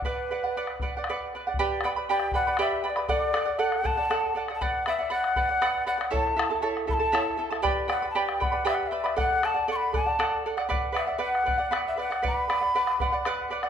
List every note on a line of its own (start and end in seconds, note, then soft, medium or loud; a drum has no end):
0.02 0.29 B4 medium
0.02 1.02 B4 medium
0.02 0.30 D5 medium
0.02 0.30 F#5 medium
0.02 bombo low medium
0.31 0.42 B4 medium
0.31 0.43 D5 medium
0.31 0.42 F#5 medium
0.44 0.56 D5 soft
0.44 0.55 F#5 medium
0.57 0.81 B4 medium
0.57 0.81 D5 medium
0.57 0.81 F#5 medium
0.67 bombo rim medium
0.80 0.93 B4 medium
0.80 0.94 D5 medium
0.80 0.94 F#5 medium
0.80 bombo low medium
0.97 1.08 D5 soft
0.97 1.07 F#5 medium
1.04 bombo rim medium
1.09 1.33 B4 medium
1.09 1.33 D5 medium
1.09 1.33 F#5 medium
1.29 bombo rim soft
1.35 1.45 B4 medium
1.35 1.45 D5 medium
1.35 1.46 F#5 medium
1.47 1.58 D5 soft
1.47 1.58 F#5 soft
1.54 bombo low medium
1.59 1.83 G4 medium
1.59 1.83 B4 medium
1.59 1.83 D5 medium
1.59 1.83 G5 medium
1.59 1.83 B5 medium
1.81 1.96 B4 medium
1.81 1.90 F#5 medium
1.81 1.96 G5 medium
1.81 bombo rim medium
1.85 1.96 D5 medium
1.85 1.95 B5 medium
1.96 2.09 B4 soft
1.96 2.08 D5 soft
1.96 2.08 B5 medium
2.09 2.34 G4 medium
2.09 2.33 B4 medium
2.09 2.34 D5 medium
2.09 2.33 G5 medium
2.09 2.32 G5 medium
2.09 2.34 B5 medium
2.20 bombo rim medium
2.32 2.46 B4 medium
2.32 2.46 D5 medium
2.32 2.57 F#5 medium
2.32 2.46 G5 medium
2.32 2.46 B5 medium
2.32 bombo low medium
2.47 2.58 B4 soft
2.47 2.58 D5 soft
2.47 2.58 B5 soft
2.57 2.83 G4 medium
2.57 2.82 B4 medium
2.57 2.84 D5 medium
2.57 2.86 E5 medium
2.57 2.83 G5 medium
2.57 2.84 B5 medium
2.57 bombo rim medium
2.84 2.96 B4 medium
2.84 2.96 D5 medium
2.84 2.91 E5 medium
2.84 2.96 G5 medium
2.84 2.95 B5 medium
2.90 3.09 D5 medium
2.96 3.10 B4 soft
2.96 3.08 D5 soft
2.96 3.09 B5 soft
2.96 bombo rim medium
3.09 3.32 A4 medium
3.09 3.33 D5 medium
3.09 3.60 D5 medium
3.09 3.34 F#5 medium
3.09 bombo low medium
3.33 3.46 A4 medium
3.33 3.46 D5 medium
3.33 3.44 F#5 medium
3.33 bombo rim medium
3.45 3.58 D5 soft
3.45 3.58 F#5 medium
3.59 3.82 A4 medium
3.59 3.83 D5 medium
3.59 3.87 F#5 medium
3.59 3.84 F#5 medium
3.72 bombo rim soft
3.83 3.97 A4 medium
3.83 3.97 D5 medium
3.83 3.96 F#5 medium
3.83 4.42 A5 loud
3.83 bombo low medium
3.97 4.09 D5 soft
3.97 4.09 F#5 soft
4.10 4.34 A4 medium
4.10 4.35 D5 medium
4.10 4.36 F#5 medium
4.10 bombo rim medium
4.35 4.48 A4 medium
4.35 4.48 D5 medium
4.35 4.49 F#5 medium
4.48 4.61 D5 soft
4.48 4.60 F#5 soft
4.48 bombo rim medium
4.55 4.64 A5 medium
4.61 4.86 B4 medium
4.61 4.87 D5 medium
4.61 4.87 F#5 medium
4.61 bombo low medium
4.86 4.99 B4 medium
4.86 4.99 D5 medium
4.86 5.11 E5 medium
4.86 4.97 F#5 medium
4.86 bombo rim medium
4.99 5.09 D5 soft
4.99 5.10 F#5 medium
5.10 5.35 B4 medium
5.10 5.36 D5 medium
5.10 5.36 F#5 medium
5.10 5.84 F#5 loud
5.24 bombo rim medium
5.36 5.49 B4 medium
5.36 5.49 D5 medium
5.36 5.48 F#5 medium
5.36 bombo low medium
5.49 5.60 D5 soft
5.49 5.61 F#5 medium
5.62 5.85 B4 medium
5.62 5.86 D5 medium
5.62 5.86 F#5 medium
5.62 bombo rim medium
5.86 6.00 B4 medium
5.86 5.99 D5 medium
5.86 5.97 F#5 medium
5.86 6.11 F#5 medium
5.98 6.10 D5 soft
5.98 6.10 F#5 medium
5.98 bombo rim medium
6.11 6.35 E4 medium
6.11 6.37 A4 medium
6.11 6.37 C#5 medium
6.11 6.35 E5 medium
6.11 6.36 A5 medium
6.11 6.59 A5 medium
6.11 bombo low medium
6.27 bombo rim soft
6.36 6.50 E4 medium
6.36 6.50 A4 medium
6.36 6.50 E5 medium
6.36 6.49 A5 medium
6.36 bombo rim medium
6.50 6.61 E4 soft
6.50 6.62 A4 soft
6.50 6.62 A5 medium
6.62 6.86 E4 medium
6.62 6.87 A4 medium
6.62 6.88 C#5 medium
6.62 6.86 E5 medium
6.62 6.87 A5 medium
6.77 bombo rim medium
6.87 7.00 E4 medium
6.87 6.98 A4 medium
6.87 7.01 E5 medium
6.87 6.98 A5 medium
6.87 6.95 B5 loud
6.87 bombo low medium
6.94 7.43 A5 loud
7.00 7.12 E4 soft
7.00 7.12 A4 soft
7.00 7.12 A5 medium
7.12 7.37 E4 medium
7.12 7.38 A4 medium
7.12 7.39 C#5 medium
7.12 7.36 E5 medium
7.12 7.38 A5 medium
7.12 bombo rim medium
7.27 bombo rim soft
7.37 7.50 E4 medium
7.37 7.50 A4 medium
7.37 7.51 E5 medium
7.37 7.49 A5 medium
7.50 7.62 E4 soft
7.50 7.63 A4 soft
7.50 7.63 A5 medium
7.50 bombo rim medium
7.62 7.89 G4 medium
7.62 7.87 B4 medium
7.62 7.88 D5 loud
7.62 7.87 G5 medium
7.62 7.88 B5 medium
7.62 bombo low medium
7.88 8.02 B4 medium
7.88 8.02 D5 medium
7.88 8.09 F#5 medium
7.88 8.02 G5 medium
7.88 8.01 B5 medium
7.88 bombo rim medium
8.02 8.14 B4 soft
8.02 8.15 D5 soft
8.02 8.15 B5 soft
8.11 8.20 A5 medium
8.15 8.41 G4 medium
8.15 8.39 B4 medium
8.15 8.40 D5 medium
8.15 8.39 G5 medium
8.15 8.44 G5 medium
8.15 8.40 B5 medium
8.29 bombo rim medium
8.40 8.52 B4 medium
8.40 8.51 D5 medium
8.40 8.67 F#5 medium
8.40 8.53 G5 medium
8.40 8.51 B5 medium
8.40 bombo low medium
8.52 8.64 B4 soft
8.52 8.64 D5 soft
8.52 8.65 B5 soft
8.65 8.91 G4 medium
8.65 8.91 B4 medium
8.65 8.91 D5 medium
8.65 8.76 E5 medium
8.65 8.90 G5 medium
8.65 8.91 B5 medium
8.65 bombo rim medium
8.74 8.83 F#5 medium
8.83 8.89 F#5 medium
8.88 9.18 E5 medium
8.88 9.04 G5 medium
8.92 9.04 B4 medium
8.92 9.03 D5 medium
8.92 9.02 B5 medium
9.04 9.18 B4 soft
9.04 9.15 D5 soft
9.04 9.17 B5 soft
9.04 bombo rim medium
9.16 9.42 A4 medium
9.16 9.42 D5 medium
9.16 9.43 F#5 medium
9.16 9.47 F#5 medium
9.16 bombo low medium
9.43 9.55 A4 medium
9.43 9.55 D5 medium
9.43 9.53 F#5 medium
9.43 9.70 A5 medium
9.43 bombo rim medium
9.54 9.67 D5 soft
9.54 9.68 F#5 soft
9.68 9.92 A4 medium
9.68 9.93 D5 medium
9.68 9.93 F#5 medium
9.68 9.77 C#6 medium
9.76 9.94 B5 medium
9.93 10.06 A4 soft
9.93 10.06 D5 medium
9.93 10.05 F#5 medium
9.93 10.48 A5 medium
9.93 bombo low medium
10.06 10.18 D5 soft
10.06 10.18 F#5 soft
10.19 10.45 A4 medium
10.19 10.45 D5 medium
10.19 10.45 F#5 medium
10.19 bombo rim medium
10.46 10.58 A4 medium
10.46 10.58 D5 medium
10.46 10.56 F#5 medium
10.57 10.68 D5 soft
10.57 10.69 F#5 medium
10.57 bombo rim medium
10.69 10.91 B4 medium
10.69 10.93 D5 medium
10.69 10.93 F#5 loud
10.69 bombo low medium
10.92 11.07 B4 medium
10.92 11.07 D5 medium
10.92 11.06 F#5 medium
10.97 11.20 E5 medium
10.97 bombo rim medium
11.07 11.18 D5 soft
11.07 11.18 F#5 soft
11.18 11.44 B4 medium
11.18 11.45 D5 medium
11.18 11.45 F#5 medium
11.23 11.81 F#5 medium
11.35 bombo rim soft
11.45 11.59 B4 medium
11.45 11.58 D5 medium
11.45 11.57 F#5 medium
11.45 bombo low medium
11.58 11.71 D5 soft
11.58 11.71 F#5 medium
11.71 11.96 B4 medium
11.71 11.97 D5 medium
11.71 11.97 F#5 medium
11.71 bombo rim medium
11.88 11.98 E5 medium
11.97 12.10 B4 medium
11.97 12.10 D5 medium
11.97 12.09 F#5 medium
11.97 12.23 F#5 medium
12.10 12.22 D5 soft
12.10 12.22 F#5 medium
12.10 bombo rim medium
12.22 12.48 B4 medium
12.22 12.48 D5 medium
12.22 12.49 F#5 medium
12.22 bombo low medium
12.27 13.48 B5 loud
12.49 12.61 B4 medium
12.49 12.61 D5 medium
12.49 12.60 F#5 medium
12.49 bombo rim medium
12.61 12.74 D5 soft
12.61 12.74 F#5 soft
12.75 12.99 B4 medium
12.75 13.00 D5 medium
12.75 13.00 F#5 medium
12.87 bombo rim medium
13.00 13.12 B4 medium
13.00 13.12 D5 medium
13.00 13.11 F#5 medium
13.00 bombo low medium
13.12 13.25 D5 soft
13.12 13.25 F#5 medium
13.25 13.49 B4 medium
13.25 13.50 D5 medium
13.25 13.51 F#5 medium
13.25 bombo rim medium
13.50 13.63 B4 medium
13.50 13.63 D5 medium
13.50 13.62 F#5 medium
13.63 13.69 D5 soft
13.63 13.69 F#5 medium
13.63 bombo rim medium